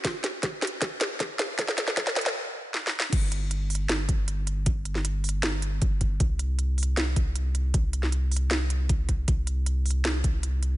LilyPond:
<<
  \new Staff \with { instrumentName = "Sub bass" } { \clef bass \time 4/4 \key c \lydian \tempo 4 = 156 r1 | r1 | g,,1~ | g,,1 |
c,1~ | c,1 | c,1 | }
  \new DrumStaff \with { instrumentName = "Drums" } \drummode { \time 4/4 <hh bd sn>8 <hh sn>8 <hh bd sn>8 <hh sn>32 hh16. <hh bd sn>8 <hh sn>8 <hh bd sn>8 <hh sn>8 | <hh bd sn>16 sn16 <hh sn>16 sn16 <hh bd sn>16 sn16 <hh sn>32 hh32 sn16 r4 \tuplet 3/2 { sn8 sn8 sn8 } | <cymc hh bd>8 hh8 hh8 hho32 hh16. <hh sn>8 <hh bd>8 hh8 hh8 | <hh bd>8 hh16 sn16 hh8 hho32 hh16. <hh sn>8 hh8 <hh bd>8 <hh bd>8 |
<hh bd>8 hh8 hh8 hho32 hh16. <hh sn>8 <hh bd>8 hh8 hh8 | <hh bd>8 hh16 sn16 hh8 hho32 hh16. <hh sn>8 hh8 <hh bd>8 <hh bd>8 | <hh bd>8 hh8 hh8 hho32 hh16. <hh sn>8 <hh bd>8 hh8 hh8 | }
>>